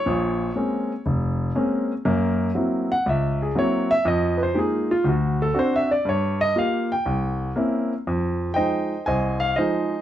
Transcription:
grand piano
Already playing: C#5
0.06 A#1 A#2
0.56 G#3 A#3 C4 C#4
1.06 F1
1.55 G#3 A#3 C4 C#4
2.05 F#2 A#3
2.55 F#3 A#3 C4 E4
2.92 F#5
3.06 C#2 E5
3.42 G#4
3.55 F#3 A#3 C4 E4 C#5
3.91 E5
4.05 F2 D#5
4.38 B4
4.43 C5
4.54 G#3 A#3 D#4 F4 G4
4.59 G#4
4.91 F4
5.04 D2
5.09 F#4
5.42 A4
5.54 C4 D4 F#4
5.59 C5
5.76 E5
5.91 D5
6.05 G2 C#5
6.41 D#5
6.56 A#3 F4 G4 F5
6.92 G5
7.06 C2
7.56 A#3 C4 C#4 E4
8.07 F2
8.54 F3 G#3 D#4 C5 D#5 G5
9.06 C2 C5 D#5 G#5
9.40 F5
9.56 F3 G#3 D#4 G#4 C5 D#5

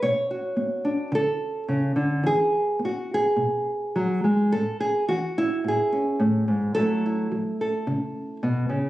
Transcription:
nylon-string guitar
0.02 B2 C#5
0.31 F#4
0.57 B3
0.85 D4
1.12 D3 A4
1.68 C#3
1.96 D3
2.23 E3 G#4
2.79 B3
2.85 F#4
3.14 G#4
3.36 B2
3.96 F#3
4.24 G#3
4.52 A2 A4
4.80 G#4
5.08 E3 F#4
5.38 E4
5.64 A2
5.68 G#4
5.92 C#4
6.20 A2
6.48 G#2
6.75 F#2 F#3 A3 E4 A4
7.06 E4
7.32 F#3
7.61 A4
7.87 C#3
8.43 B2
8.69 C#3

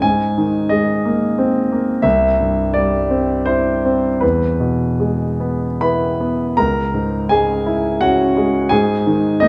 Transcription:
grand piano
0.02 G#2 G#5
0.38 D#3
0.69 G#3 D#5
1.05 A#3
1.38 C4
1.72 A#3
2.02 C2 E5
2.40 G2
2.74 G3 D5
3.10 C4
3.46 E4 C5
3.85 C4
4.21 E2 B4
4.60 B2
5.00 G#3
5.40 B3
5.81 E4 B4 B5
6.20 B3
6.57 C#2 A#4 A#5
6.94 G#2
7.29 G#3 G#4 G#5
7.66 E4
8.01 C#4 F#4 F#5
8.37 G#3
8.69 G#2 G#4 G#5
9.07 D#3
9.40 A#3 D#4 D#5

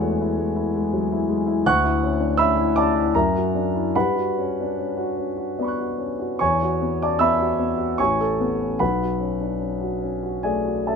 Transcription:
grand piano
Already playing: E2 G#3 E4 F#4 C#5 F#5
0.01 A3
0.21 E4
0.38 G#3
0.56 E4
0.75 G#3
0.93 F#3
1.12 E4
1.29 G#3
1.47 E4
1.66 D2 F#5 C#6 F#6
1.84 E4
2.03 C#4
2.20 D4
2.37 C#4 E5 B5 E6
2.57 E4
2.76 C#4 D5 A5 D6
2.95 E4
3.15 F#2 A#4 E5 A#5
3.35 F#4
3.54 D4
3.75 E4
3.95 G2 B4 F#5 B5
4.16 F#4
4.38 C#4
4.60 D4
4.79 C#4
4.97 F#4
5.17 C#4
5.37 F#4
5.59 B3 D5 B5
5.64 C#6 F#6
5.79 F#4
5.98 C#4
6.19 F#4
6.39 E2 C#5 G#5 C#6
6.63 F#4
6.82 B3
7.02 C#4 D5 A5 D6
7.19 B3 E5 B5 E6
7.39 F#4
7.59 B3
7.77 F#4
7.98 A1 C#5 G#5 C#6
8.20 A4
8.40 B3
8.60 C#4
8.79 B1 B4 F#5 B5
9.02 F#4
9.20 C#4
9.41 D4
9.60 C#4
9.81 F#4
10.01 C#4
10.23 F#4
10.43 A3 G#4 D5 G#5
10.65 F#4
10.87 C#4 A4 E5 A5

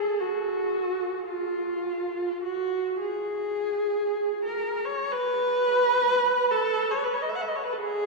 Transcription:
viola
Already playing: G#4
0.20 F#4
1.28 F4
2.44 F#4
3.01 G#4
4.45 A#4
4.85 C#5
5.12 B4
6.51 A4
6.91 C#5
7.04 B4
7.13 C#5
7.22 D#5
7.29 E5
7.35 F#5
7.41 E5
7.48 D#5
7.55 C#5
7.64 B4
7.73 A4
7.80 G#4

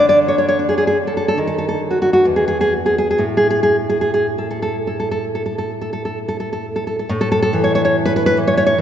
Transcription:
nylon-string guitar
Already playing: D3
0.09 D5
0.28 C#5
0.38 C#5
0.48 C#5
0.59 D4
0.69 G#4
0.78 G#4
0.87 G#4
1.07 A4
1.17 A4
1.28 A4
1.38 D#3
1.47 A4
1.58 A4
1.69 A4
1.91 F#4
2.02 F#4
2.13 F#4
2.25 E2
2.36 G#4
2.48 G#4
2.61 G#4
2.86 G#4
2.98 G#4
3.11 G#4
3.18 A2
3.37 G#4
3.50 G#4
3.63 G#4
3.89 G#4
4.01 G#4
4.14 G#4
4.38 A4
4.51 A4
4.62 A4
4.87 A4
5.00 A4
5.11 A4
5.35 A4
5.46 A4
5.58 A4
5.81 A4
5.93 A4
6.05 A4
6.28 A4
6.40 A4
6.53 A4
6.76 A4
6.87 A4
6.99 A4
7.09 A2
7.21 A4
7.32 A4
7.43 A4
7.53 E3
7.64 C#5
7.75 C#5
7.85 C#5
8.06 B4
8.16 B4
8.26 B4
8.37 E3
8.47 C#5
8.57 C#5
8.66 C#5
8.78 E3

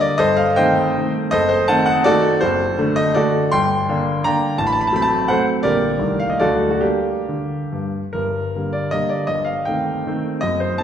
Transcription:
grand piano
Already playing: D3 G3 A#3
0.01 D5
0.18 G1 A4 C5 D#5
0.37 F5
0.56 D#3 A3 C4 C5 D#5 G5
0.98 D#3 A3 C4
1.31 F#1 A4 C5 D#5
1.49 C5
1.68 D#3 A3 C4 D#5 F#5 A5
1.86 F#5
2.04 D#3 A3 C4 F#4 A4 D5
2.41 F#1 F#4 A4 C5
2.79 D3 A3 D4
2.96 D#5
3.14 D3 A3 D4 F#4 A4 D5
3.52 G1 G5 C6
3.89 D3 A#3 D4
4.24 D3 A#3 D4 D5 G5 A#5
4.58 A1 A5
4.67 B5
4.72 A5
4.81 B5
4.87 A5
4.92 F#3 A3 C4 B5
5.02 A5
5.28 F#3 A3 C4 A4 C5 F#5
5.63 A#1 D3 G3 A#3 G4 A#4 D5
5.99 C2 D#3 A3
6.20 F5
6.30 D#5
6.39 D2 D3 F#3 A3 F#4 A4 D5
6.71 F#4
6.81 G3 A#3 D4 G4
7.28 D3
7.72 G2
8.13 G1 G2 A#4
8.56 D3 G3 A#3
8.73 D5
8.91 D3 G3 A#3 D#5
9.09 D5
9.27 G1 G2 D#5
9.45 F5
9.65 D#3 A3 C4 G5
10.07 D#3 A3 C4
10.41 F#1 F#2 D#5
10.60 C5
10.78 D#3 A5

